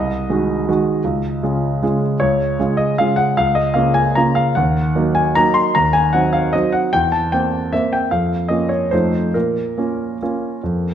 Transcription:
0.00 0.27 C2 soft
0.00 2.01 D#5 medium
0.29 0.65 D#3 soft
0.29 0.65 G#3 soft
0.29 0.65 F#4 soft
0.68 1.02 D#3 soft
0.68 1.02 G#3 soft
0.68 1.02 F#4 soft
1.04 1.41 C#2 soft
1.43 1.78 C#3 soft
1.43 1.79 G#3 soft
1.43 1.79 F4 soft
1.82 2.17 C#3 soft
1.82 2.17 G#3 soft
1.82 2.17 F4 soft
2.20 2.57 C#2 soft
2.20 2.77 C#5 medium
2.59 2.95 C#3 soft
2.59 2.94 G#3 soft
2.59 2.95 F4 soft
2.77 2.97 D#5 medium
2.98 3.34 C#3 soft
2.98 3.35 G#3 soft
2.98 3.35 F4 soft
2.98 3.18 F5 medium
3.16 3.36 F#5 medium
3.37 3.75 C#2 soft
3.37 3.56 F5 medium
3.55 3.75 D#5 medium
3.74 4.11 C#3 soft
3.74 4.11 A#3 soft
3.74 4.12 F4 soft
3.74 3.94 F5 medium
3.94 4.15 G#5 medium
4.15 4.52 C#3 soft
4.15 4.52 A#3 soft
4.15 4.52 F4 soft
4.15 4.36 A#5 medium
4.35 4.55 F5 medium
4.55 4.94 D#2 soft
4.55 5.15 F#5 medium
4.95 5.31 F#3 soft
4.95 5.32 A#3 soft
4.95 5.32 D#4 soft
5.15 5.35 G#5 medium
5.35 5.71 F#3 soft
5.35 5.72 A#3 soft
5.35 5.71 D#4 soft
5.35 5.55 A#5 medium
5.54 5.74 C6 medium
5.75 6.13 D#2 soft
5.75 5.94 A#5 medium
5.93 6.13 G#5 medium
6.13 6.49 F#3 soft
6.13 6.50 C4 soft
6.13 6.50 D#4 soft
6.13 6.33 F#5 medium
6.33 6.53 F5 medium
6.53 6.89 F#3 soft
6.53 6.89 C4 soft
6.53 6.89 D#4 soft
6.53 6.72 D#5 medium
6.72 6.92 F#5 medium
6.93 7.31 E2 soft
6.93 7.12 G5 medium
7.12 7.32 A5 medium
7.32 7.69 A#3 soft
7.32 7.69 C4 soft
7.32 7.72 G5 medium
7.73 8.08 A#3 soft
7.73 8.09 C4 soft
7.73 7.92 E5 medium
7.93 8.12 G5 medium
8.11 8.50 F2 soft
8.11 8.50 F5 medium
8.48 8.88 A#3 soft
8.48 8.88 C#4 soft
8.48 8.89 F4 soft
8.48 8.70 D#5 medium
8.69 8.91 C#5 soft
8.91 9.34 F2 soft
8.91 9.31 A3 soft
8.91 9.31 D#4 soft
8.91 9.32 F4 soft
8.91 9.34 C5 soft
9.34 9.76 A#2 soft
9.34 10.94 A#4 soft
9.78 10.17 A#3 soft
9.78 10.17 C#4 soft
9.78 10.18 F4 soft
10.22 10.61 A#3 soft
10.22 10.61 C#4 soft
10.22 10.61 F4 soft
10.63 10.94 F2 soft

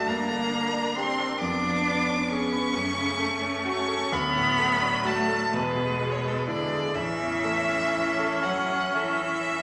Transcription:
0.00 0.10 A3 loud
0.00 1.36 D4 medium
0.07 1.36 G2 medium
0.07 0.97 A#3 loud
0.07 0.97 A#5 loud
0.30 0.65 D3 medium
0.52 0.87 A#3 medium
0.73 1.09 D4 medium
0.95 1.39 C4 loud
0.95 1.32 G4 medium
0.95 1.39 C6 loud
1.20 1.41 A#4 medium
1.40 2.71 F2 medium
1.40 2.77 B3 medium
1.40 2.28 D4 loud
1.40 2.30 D6 loud
1.65 1.99 F3 medium
1.87 2.22 B3 medium
2.09 2.44 C#4 medium
2.28 3.63 C#4 loud
2.28 2.66 G#4 medium
2.28 3.66 C#6 loud
2.52 2.75 B4 medium
2.73 4.08 F#2 medium
2.73 4.16 A3 medium
2.97 3.34 C#3 medium
3.19 3.57 A3 medium
3.42 3.80 C#4 medium
3.65 4.14 C#4 loud
3.65 4.03 F#4 medium
3.65 4.15 C#6 loud
3.88 4.12 A4 medium
4.12 5.49 D2 medium
4.12 5.52 F#3 loud
4.12 5.04 B3 loud
4.12 5.08 B5 loud
4.35 4.73 A2 medium
4.59 4.96 A3 medium
4.82 5.20 D4 medium
5.05 5.55 A3 loud
5.05 5.43 F#4 medium
5.05 5.55 A5 loud
5.28 5.52 A4 medium
5.52 6.90 E2 medium
5.52 6.50 B2 loud
5.52 6.92 G#3 medium
5.52 6.13 B4 loud
5.76 6.14 B2 medium
6.00 6.38 G#3 medium
6.12 6.22 C#5 loud
6.20 6.62 B3 medium
6.20 6.29 B4 loud
6.28 6.40 A4 loud
6.38 6.47 B4 loud
6.47 6.95 D3 loud
6.47 6.85 E4 medium
6.47 6.96 D5 loud
6.72 6.95 G#4 medium
6.94 9.62 A1 medium
6.94 8.46 E3 loud
6.94 9.62 C#4 loud
6.94 8.45 E5 loud
7.20 7.59 E2 medium
7.44 7.84 A3 medium
7.69 8.09 C#4 medium
7.94 8.34 E4 medium
8.19 8.59 A4 medium
8.44 8.96 F#3 loud
8.44 8.85 C#5 medium
8.44 8.96 F#5 loud
8.69 9.10 E5 medium
8.94 9.62 E3 loud
8.94 9.37 A4 medium
8.94 9.62 E5 loud
9.21 9.62 E4 medium
9.47 9.62 C#4 medium

